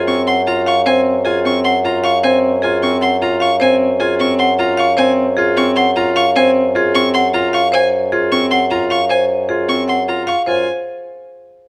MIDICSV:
0, 0, Header, 1, 5, 480
1, 0, Start_track
1, 0, Tempo, 392157
1, 1054, Time_signature, 7, 3, 24, 8
1, 14298, End_track
2, 0, Start_track
2, 0, Title_t, "Violin"
2, 0, Program_c, 0, 40
2, 92, Note_on_c, 0, 85, 71
2, 272, Note_off_c, 0, 85, 0
2, 333, Note_on_c, 0, 84, 58
2, 513, Note_off_c, 0, 84, 0
2, 571, Note_on_c, 0, 82, 59
2, 752, Note_off_c, 0, 82, 0
2, 817, Note_on_c, 0, 85, 71
2, 996, Note_off_c, 0, 85, 0
2, 1052, Note_on_c, 0, 80, 70
2, 1232, Note_off_c, 0, 80, 0
2, 1529, Note_on_c, 0, 80, 63
2, 1711, Note_off_c, 0, 80, 0
2, 1777, Note_on_c, 0, 85, 69
2, 1955, Note_off_c, 0, 85, 0
2, 2013, Note_on_c, 0, 84, 60
2, 2193, Note_off_c, 0, 84, 0
2, 2261, Note_on_c, 0, 82, 57
2, 2438, Note_off_c, 0, 82, 0
2, 2497, Note_on_c, 0, 85, 74
2, 2676, Note_off_c, 0, 85, 0
2, 2735, Note_on_c, 0, 80, 74
2, 2914, Note_off_c, 0, 80, 0
2, 3219, Note_on_c, 0, 80, 62
2, 3397, Note_off_c, 0, 80, 0
2, 3459, Note_on_c, 0, 85, 73
2, 3637, Note_off_c, 0, 85, 0
2, 3697, Note_on_c, 0, 84, 61
2, 3876, Note_off_c, 0, 84, 0
2, 3938, Note_on_c, 0, 82, 59
2, 4116, Note_off_c, 0, 82, 0
2, 4180, Note_on_c, 0, 85, 75
2, 4357, Note_off_c, 0, 85, 0
2, 4421, Note_on_c, 0, 80, 77
2, 4598, Note_off_c, 0, 80, 0
2, 4895, Note_on_c, 0, 80, 66
2, 5074, Note_off_c, 0, 80, 0
2, 5134, Note_on_c, 0, 85, 75
2, 5314, Note_off_c, 0, 85, 0
2, 5372, Note_on_c, 0, 84, 67
2, 5553, Note_off_c, 0, 84, 0
2, 5615, Note_on_c, 0, 82, 60
2, 5794, Note_off_c, 0, 82, 0
2, 5856, Note_on_c, 0, 85, 83
2, 6035, Note_off_c, 0, 85, 0
2, 6090, Note_on_c, 0, 80, 79
2, 6271, Note_off_c, 0, 80, 0
2, 6812, Note_on_c, 0, 85, 77
2, 6993, Note_off_c, 0, 85, 0
2, 7050, Note_on_c, 0, 84, 70
2, 7231, Note_off_c, 0, 84, 0
2, 7293, Note_on_c, 0, 82, 68
2, 7473, Note_off_c, 0, 82, 0
2, 7536, Note_on_c, 0, 85, 85
2, 7715, Note_off_c, 0, 85, 0
2, 7782, Note_on_c, 0, 80, 84
2, 7959, Note_off_c, 0, 80, 0
2, 8502, Note_on_c, 0, 85, 86
2, 8679, Note_off_c, 0, 85, 0
2, 8741, Note_on_c, 0, 84, 70
2, 8918, Note_off_c, 0, 84, 0
2, 8978, Note_on_c, 0, 82, 63
2, 9157, Note_off_c, 0, 82, 0
2, 9225, Note_on_c, 0, 85, 83
2, 9401, Note_off_c, 0, 85, 0
2, 9465, Note_on_c, 0, 80, 81
2, 9641, Note_off_c, 0, 80, 0
2, 10181, Note_on_c, 0, 85, 79
2, 10358, Note_off_c, 0, 85, 0
2, 10415, Note_on_c, 0, 84, 62
2, 10594, Note_off_c, 0, 84, 0
2, 10654, Note_on_c, 0, 82, 60
2, 10834, Note_off_c, 0, 82, 0
2, 10899, Note_on_c, 0, 85, 77
2, 11077, Note_off_c, 0, 85, 0
2, 11139, Note_on_c, 0, 80, 72
2, 11317, Note_off_c, 0, 80, 0
2, 11858, Note_on_c, 0, 85, 68
2, 12037, Note_off_c, 0, 85, 0
2, 12104, Note_on_c, 0, 84, 52
2, 12280, Note_off_c, 0, 84, 0
2, 12342, Note_on_c, 0, 82, 54
2, 12519, Note_off_c, 0, 82, 0
2, 12574, Note_on_c, 0, 85, 65
2, 12754, Note_off_c, 0, 85, 0
2, 12821, Note_on_c, 0, 80, 66
2, 13040, Note_off_c, 0, 80, 0
2, 14298, End_track
3, 0, Start_track
3, 0, Title_t, "Marimba"
3, 0, Program_c, 1, 12
3, 0, Note_on_c, 1, 68, 58
3, 163, Note_off_c, 1, 68, 0
3, 333, Note_on_c, 1, 78, 57
3, 645, Note_off_c, 1, 78, 0
3, 813, Note_on_c, 1, 77, 80
3, 1053, Note_on_c, 1, 72, 69
3, 1125, Note_off_c, 1, 77, 0
3, 1365, Note_off_c, 1, 72, 0
3, 1526, Note_on_c, 1, 68, 56
3, 1843, Note_off_c, 1, 68, 0
3, 2012, Note_on_c, 1, 78, 57
3, 2325, Note_off_c, 1, 78, 0
3, 2493, Note_on_c, 1, 77, 78
3, 2736, Note_on_c, 1, 72, 68
3, 2805, Note_off_c, 1, 77, 0
3, 3047, Note_off_c, 1, 72, 0
3, 3209, Note_on_c, 1, 68, 57
3, 3524, Note_off_c, 1, 68, 0
3, 3687, Note_on_c, 1, 78, 63
3, 4003, Note_off_c, 1, 78, 0
3, 4165, Note_on_c, 1, 77, 77
3, 4405, Note_on_c, 1, 72, 71
3, 4483, Note_off_c, 1, 77, 0
3, 4723, Note_off_c, 1, 72, 0
3, 4895, Note_on_c, 1, 68, 58
3, 5206, Note_off_c, 1, 68, 0
3, 5375, Note_on_c, 1, 78, 63
3, 5686, Note_off_c, 1, 78, 0
3, 5844, Note_on_c, 1, 77, 82
3, 6081, Note_on_c, 1, 72, 70
3, 6162, Note_off_c, 1, 77, 0
3, 6401, Note_off_c, 1, 72, 0
3, 6569, Note_on_c, 1, 68, 67
3, 6884, Note_off_c, 1, 68, 0
3, 7058, Note_on_c, 1, 78, 68
3, 7367, Note_off_c, 1, 78, 0
3, 7539, Note_on_c, 1, 77, 84
3, 7788, Note_on_c, 1, 72, 79
3, 7847, Note_off_c, 1, 77, 0
3, 8091, Note_off_c, 1, 72, 0
3, 8276, Note_on_c, 1, 68, 69
3, 8573, Note_off_c, 1, 68, 0
3, 8744, Note_on_c, 1, 78, 69
3, 9049, Note_off_c, 1, 78, 0
3, 9219, Note_on_c, 1, 77, 84
3, 9450, Note_on_c, 1, 72, 74
3, 9527, Note_off_c, 1, 77, 0
3, 9764, Note_off_c, 1, 72, 0
3, 9942, Note_on_c, 1, 68, 62
3, 10248, Note_off_c, 1, 68, 0
3, 10418, Note_on_c, 1, 78, 64
3, 10727, Note_off_c, 1, 78, 0
3, 10897, Note_on_c, 1, 77, 72
3, 11132, Note_on_c, 1, 72, 67
3, 11207, Note_off_c, 1, 77, 0
3, 11445, Note_off_c, 1, 72, 0
3, 11614, Note_on_c, 1, 68, 54
3, 11926, Note_off_c, 1, 68, 0
3, 12091, Note_on_c, 1, 78, 58
3, 12405, Note_off_c, 1, 78, 0
3, 12571, Note_on_c, 1, 77, 74
3, 12809, Note_on_c, 1, 72, 58
3, 12885, Note_off_c, 1, 77, 0
3, 13034, Note_off_c, 1, 72, 0
3, 14298, End_track
4, 0, Start_track
4, 0, Title_t, "Grand piano"
4, 0, Program_c, 2, 0
4, 0, Note_on_c, 2, 65, 75
4, 90, Note_on_c, 2, 60, 60
4, 165, Note_off_c, 2, 65, 0
4, 404, Note_off_c, 2, 60, 0
4, 575, Note_on_c, 2, 65, 73
4, 886, Note_off_c, 2, 65, 0
4, 1051, Note_on_c, 2, 60, 61
4, 1365, Note_off_c, 2, 60, 0
4, 1534, Note_on_c, 2, 65, 74
4, 1772, Note_on_c, 2, 60, 54
4, 1846, Note_off_c, 2, 65, 0
4, 2085, Note_off_c, 2, 60, 0
4, 2260, Note_on_c, 2, 65, 70
4, 2568, Note_off_c, 2, 65, 0
4, 2740, Note_on_c, 2, 60, 63
4, 3048, Note_off_c, 2, 60, 0
4, 3226, Note_on_c, 2, 65, 75
4, 3463, Note_on_c, 2, 60, 61
4, 3530, Note_off_c, 2, 65, 0
4, 3769, Note_off_c, 2, 60, 0
4, 3941, Note_on_c, 2, 65, 78
4, 4248, Note_off_c, 2, 65, 0
4, 4421, Note_on_c, 2, 60, 64
4, 4728, Note_off_c, 2, 60, 0
4, 4899, Note_on_c, 2, 65, 76
4, 5140, Note_on_c, 2, 60, 61
4, 5207, Note_off_c, 2, 65, 0
4, 5448, Note_off_c, 2, 60, 0
4, 5617, Note_on_c, 2, 65, 86
4, 5927, Note_off_c, 2, 65, 0
4, 6099, Note_on_c, 2, 60, 67
4, 6408, Note_off_c, 2, 60, 0
4, 6580, Note_on_c, 2, 65, 88
4, 6819, Note_on_c, 2, 60, 65
4, 6888, Note_off_c, 2, 65, 0
4, 7127, Note_off_c, 2, 60, 0
4, 7301, Note_on_c, 2, 65, 88
4, 7608, Note_off_c, 2, 65, 0
4, 7782, Note_on_c, 2, 60, 67
4, 8088, Note_off_c, 2, 60, 0
4, 8261, Note_on_c, 2, 65, 85
4, 8503, Note_on_c, 2, 60, 64
4, 8568, Note_off_c, 2, 65, 0
4, 8809, Note_off_c, 2, 60, 0
4, 8982, Note_on_c, 2, 65, 87
4, 9288, Note_off_c, 2, 65, 0
4, 9942, Note_on_c, 2, 65, 80
4, 10181, Note_on_c, 2, 60, 64
4, 10249, Note_off_c, 2, 65, 0
4, 10488, Note_off_c, 2, 60, 0
4, 10665, Note_on_c, 2, 65, 80
4, 10969, Note_off_c, 2, 65, 0
4, 11620, Note_on_c, 2, 65, 71
4, 11854, Note_on_c, 2, 60, 54
4, 11928, Note_off_c, 2, 65, 0
4, 12166, Note_off_c, 2, 60, 0
4, 12341, Note_on_c, 2, 65, 67
4, 12648, Note_off_c, 2, 65, 0
4, 12818, Note_on_c, 2, 65, 67
4, 13039, Note_off_c, 2, 65, 0
4, 14298, End_track
5, 0, Start_track
5, 0, Title_t, "Bassoon"
5, 0, Program_c, 3, 70
5, 0, Note_on_c, 3, 42, 69
5, 12672, Note_off_c, 3, 42, 0
5, 12817, Note_on_c, 3, 42, 58
5, 13039, Note_off_c, 3, 42, 0
5, 14298, End_track
0, 0, End_of_file